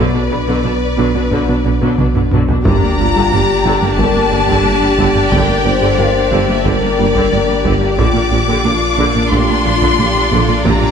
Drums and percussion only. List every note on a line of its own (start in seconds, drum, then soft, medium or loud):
1.31 taiko medium
1.82 taiko medium
1.98 taiko mid medium
2.15 taiko low-mid medium
2.31 taiko low-mid medium
2.49 taiko low medium
2.65 taiko medium
3.82 taiko low-mid soft
3.99 taiko medium
4.49 taiko medium
4.98 taiko medium
5.15 taiko low-mid soft
5.32 taiko medium
6.65 taiko medium
7.15 taiko medium
7.65 taiko medium
7.99 taiko medium
9.32 taiko medium
9.82 taiko medium
10.32 taiko medium
10.65 taiko loud